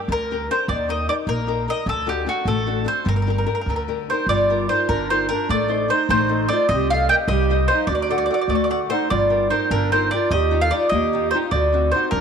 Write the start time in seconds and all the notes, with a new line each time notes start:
Already playing: D4 G4 A#4
0.08 D2 D3 A#4
0.31 D4 G4 A#4
0.51 D4 G4 A#4 C5
0.68 D#2 D#3 D5
0.88 D#4 G4 A#4 D#5
1.09 D#4 G4 A#4 D5
1.27 A#1 A#3 A#4
1.47 D#4 G4 A#4
1.68 D#4 G4 A#4 D#5
1.86 D2 D3 A4
2.06 D4 F#4 G4 A4
2.26 D4 F#4 A4
2.45 A1 A3 A4
2.67 D4 F#4 A4
2.84 D4 F#4 A4 C5
3.05 G1 G3 A#4
3.16 A#4
3.22 A#4
3.27 D4 G4 A#4
3.38 A#4
3.46 D4 G4 A#4
3.55 A#4
3.61 A#4
3.66 D2 D3 A#4
3.76 A#4
3.88 D4 G4 A#4
4.08 D4 D#4 G4 A#4 C5
4.27 G1 G3 F4 D5
4.49 F4 G4 A#4
4.69 D#4 F4 G4 A#4 C5
4.89 G1 D3 D4 A#4
5.10 D#4 F4 G4 A#4 C5
5.29 D4 F4 G4 A#4
5.49 A1 A3 A4 D5
5.68 D#4 A4 C5
5.88 D#4 A4 C5
6.09 A1 A3 D#4 C5
6.29 D#4 A4 C5
6.49 D#4 A4 C5 D5
6.53 F4
6.69 C2 C4 D#5
6.74 G4
6.90 G4 A4 C5 D#5 F5
7.09 G4 A#4 C5 D#5 G5
7.28 C2 G3 G4 D#5
7.50 G4 C5 D#5
7.68 G4 C5 D#5
7.72 D#4
7.87 D2 D4 F#4 D5
7.95 D5
8.02 D5
8.09 A4 D5 F#5
8.18 D5
8.26 D5
8.30 A4 D5 F#5
8.41 D5
8.48 D2 A3 D5
8.55 D5
8.64 D5
8.70 A4 D5 F#5
8.89 D#4 A4 C5 D5 F#5
9.10 G1 G3 F4 D5
9.29 F4 G4 A#4
9.49 D#4 F4 G4 A#4 C5
9.71 G1 D3 D4 A#4
9.92 D#4 F4 G4 A#4 C5
10.11 F4 G4 A#4 D5
10.30 D#2 D#3 G4 D#5
10.51 D#4 F4 G4
10.61 A4 F5
10.71 D#4 F4 G4 D5
10.89 D#2 A#3 D#5
10.94 G4
11.13 D#4 F4 G4
11.31 D#4 F4 C5
11.35 D#4 G4
11.51 D2 D3 F#4 D5
11.73 C4 D4 F#4
11.92 C4 D4 D#4 F#4 C5
12.11 D2 F#3 D4 A#4